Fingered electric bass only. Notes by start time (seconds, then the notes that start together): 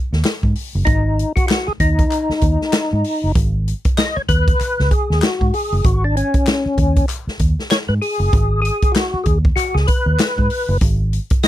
0.13 D#2
0.43 G#2
0.75 F#1
0.87 G#1
1.68 muted fingered electric bass stroke
1.80 D#2
2.30 muted fingered electric bass stroke
2.42 D#2
2.93 G#2
3.24 F#1
3.35 G#1
4.17 muted fingered electric bass stroke
4.29 D#2
4.61 muted fingered electric bass stroke
4.80 C#2
5.10 D#2
5.41 G#2
5.73 F#1
5.85 G#1
6.66 muted fingered electric bass stroke
6.78 D#2
7.27 muted fingered electric bass stroke
7.40 D#2
7.89 G#2
8.20 F#1
8.33 G#1
9.14 muted fingered electric bass stroke
9.26 D#2
9.56 muted fingered electric bass stroke
9.75 C#2
10.06 D#2
10.38 G#2
10.69 F#1
10.81 G#1